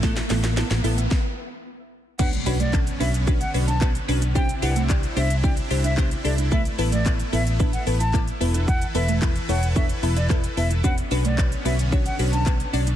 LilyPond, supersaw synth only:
\new Staff \with { instrumentName = "Supersaw synth" } { \time 4/4 \key a \major \tempo 4 = 111 << { e'2 r2 | cis'1 | e'1~ | e'2.~ e'8 b'8~ |
b'1 | cis'1 | } \\ { <a b>2 r2 | <d b>1 | <c c' d'>1 | <a b>2.~ <a b>8 <e e' a'>8~ |
<e e' a'>1 | <d b>1 | } >> }